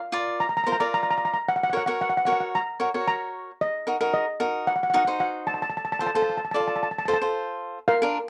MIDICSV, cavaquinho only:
0, 0, Header, 1, 2, 480
1, 0, Start_track
1, 0, Tempo, 534283
1, 1316, Time_signature, 4, 2, 24, 8
1, 7450, End_track
2, 0, Start_track
2, 0, Title_t, "Cavaquinho"
2, 0, Program_c, 0, 24
2, 109, Note_on_c, 0, 65, 65
2, 118, Note_on_c, 0, 74, 80
2, 119, Note_on_c, 0, 70, 55
2, 405, Note_off_c, 0, 65, 0
2, 407, Note_off_c, 0, 70, 0
2, 409, Note_off_c, 0, 74, 0
2, 596, Note_on_c, 0, 72, 73
2, 603, Note_on_c, 0, 70, 55
2, 607, Note_on_c, 0, 65, 56
2, 675, Note_off_c, 0, 65, 0
2, 675, Note_off_c, 0, 72, 0
2, 676, Note_off_c, 0, 70, 0
2, 718, Note_on_c, 0, 74, 65
2, 722, Note_on_c, 0, 70, 52
2, 727, Note_on_c, 0, 65, 51
2, 1225, Note_off_c, 0, 65, 0
2, 1225, Note_off_c, 0, 70, 0
2, 1225, Note_off_c, 0, 74, 0
2, 1553, Note_on_c, 0, 73, 62
2, 1555, Note_on_c, 0, 70, 51
2, 1562, Note_on_c, 0, 66, 52
2, 1631, Note_off_c, 0, 66, 0
2, 1631, Note_off_c, 0, 70, 0
2, 1633, Note_off_c, 0, 73, 0
2, 1682, Note_on_c, 0, 73, 74
2, 1689, Note_on_c, 0, 66, 59
2, 1689, Note_on_c, 0, 70, 58
2, 1898, Note_off_c, 0, 66, 0
2, 1899, Note_off_c, 0, 73, 0
2, 1900, Note_off_c, 0, 70, 0
2, 2034, Note_on_c, 0, 73, 72
2, 2040, Note_on_c, 0, 70, 55
2, 2044, Note_on_c, 0, 66, 57
2, 2327, Note_off_c, 0, 66, 0
2, 2328, Note_off_c, 0, 70, 0
2, 2328, Note_off_c, 0, 73, 0
2, 2512, Note_on_c, 0, 73, 65
2, 2515, Note_on_c, 0, 70, 52
2, 2522, Note_on_c, 0, 66, 62
2, 2592, Note_off_c, 0, 66, 0
2, 2592, Note_off_c, 0, 70, 0
2, 2593, Note_off_c, 0, 73, 0
2, 2644, Note_on_c, 0, 73, 63
2, 2647, Note_on_c, 0, 70, 49
2, 2650, Note_on_c, 0, 66, 49
2, 3146, Note_off_c, 0, 66, 0
2, 3147, Note_off_c, 0, 70, 0
2, 3147, Note_off_c, 0, 73, 0
2, 3474, Note_on_c, 0, 70, 68
2, 3481, Note_on_c, 0, 63, 63
2, 3484, Note_on_c, 0, 66, 52
2, 3553, Note_off_c, 0, 70, 0
2, 3554, Note_off_c, 0, 63, 0
2, 3554, Note_off_c, 0, 66, 0
2, 3599, Note_on_c, 0, 70, 76
2, 3605, Note_on_c, 0, 63, 66
2, 3608, Note_on_c, 0, 66, 52
2, 3817, Note_off_c, 0, 66, 0
2, 3817, Note_off_c, 0, 70, 0
2, 3818, Note_off_c, 0, 63, 0
2, 3953, Note_on_c, 0, 70, 74
2, 3957, Note_on_c, 0, 66, 57
2, 3960, Note_on_c, 0, 63, 62
2, 4247, Note_off_c, 0, 63, 0
2, 4247, Note_off_c, 0, 66, 0
2, 4247, Note_off_c, 0, 70, 0
2, 4435, Note_on_c, 0, 66, 53
2, 4440, Note_on_c, 0, 63, 61
2, 4441, Note_on_c, 0, 70, 72
2, 4513, Note_off_c, 0, 66, 0
2, 4514, Note_off_c, 0, 63, 0
2, 4515, Note_off_c, 0, 70, 0
2, 4559, Note_on_c, 0, 72, 65
2, 4564, Note_on_c, 0, 63, 58
2, 4569, Note_on_c, 0, 66, 47
2, 5065, Note_off_c, 0, 66, 0
2, 5066, Note_off_c, 0, 63, 0
2, 5066, Note_off_c, 0, 72, 0
2, 5394, Note_on_c, 0, 72, 68
2, 5398, Note_on_c, 0, 69, 56
2, 5406, Note_on_c, 0, 65, 48
2, 5473, Note_off_c, 0, 69, 0
2, 5474, Note_off_c, 0, 65, 0
2, 5474, Note_off_c, 0, 72, 0
2, 5527, Note_on_c, 0, 72, 71
2, 5531, Note_on_c, 0, 69, 60
2, 5536, Note_on_c, 0, 65, 62
2, 5741, Note_off_c, 0, 65, 0
2, 5741, Note_off_c, 0, 69, 0
2, 5741, Note_off_c, 0, 72, 0
2, 5877, Note_on_c, 0, 74, 67
2, 5883, Note_on_c, 0, 69, 58
2, 5889, Note_on_c, 0, 65, 60
2, 6169, Note_off_c, 0, 69, 0
2, 6170, Note_off_c, 0, 65, 0
2, 6170, Note_off_c, 0, 74, 0
2, 6360, Note_on_c, 0, 72, 70
2, 6361, Note_on_c, 0, 69, 61
2, 6368, Note_on_c, 0, 65, 60
2, 6435, Note_off_c, 0, 65, 0
2, 6435, Note_off_c, 0, 69, 0
2, 6436, Note_off_c, 0, 72, 0
2, 6481, Note_on_c, 0, 72, 64
2, 6487, Note_on_c, 0, 69, 41
2, 6493, Note_on_c, 0, 65, 50
2, 6986, Note_off_c, 0, 72, 0
2, 6987, Note_off_c, 0, 65, 0
2, 6987, Note_off_c, 0, 69, 0
2, 7203, Note_on_c, 0, 70, 82
2, 7211, Note_on_c, 0, 65, 65
2, 7213, Note_on_c, 0, 62, 65
2, 7342, Note_off_c, 0, 62, 0
2, 7342, Note_off_c, 0, 70, 0
2, 7343, Note_off_c, 0, 65, 0
2, 7450, End_track
0, 0, End_of_file